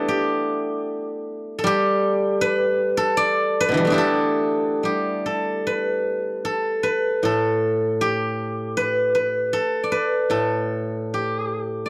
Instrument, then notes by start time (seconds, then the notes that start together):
guzheng
Already playing: A3 B3 D4 E4 A4 B4
0.08 G4
1.59 A4
1.64 G3 G4
2.41 B4
2.97 A4
3.17 D5
3.60 B4
3.69 B2 D3
3.74 E3 G3
3.85 A3 B3
3.90 D4 E4 G4
3.98 A4
4.83 G3 G4
5.26 A4
5.67 B4
6.45 A4
6.83 B4
7.23 A2 A4
8.01 G4
8.77 B4
9.15 B4
9.53 A4
9.84 D5
9.92 B4
10.30 A2 A4
11.14 G4
11.86 D5